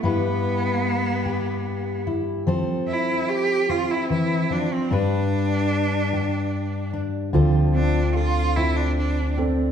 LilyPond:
<<
  \new Staff \with { instrumentName = "Cello" } { \time 3/4 \key g \mixolydian \tempo 4 = 74 b2~ b8 r8 | r8 e'8 g'8 f'16 e'16 e'8 d'16 c'16 | d'2~ d'8 r8 | r8 d'8 f'8 e'16 d'16 d'8 r8 | }
  \new Staff \with { instrumentName = "Felt piano" } { \time 3/4 \key g \mixolydian r2. | r2. | r2. | <f a'>8 c'8 a'4. <c' d' a'>8 | }
  \new Staff \with { instrumentName = "Steel-string acoustic guitar" } { \time 3/4 \key g \mixolydian << { <e' g' b'>4. g'4 e'8 | <c' a' c''>4. c'4. | <d' g' b'>4. g'4 d'8 | <c' f' c''>4. c'4 c'8 | } \\ { g,2. | f2 e8 f8 | g,2. | d2. | } >> }
  \new Staff \with { instrumentName = "Fingered electric bass" } { \clef bass \time 3/4 \key g \mixolydian r2. | r2. | r2. | d,2. | }
>>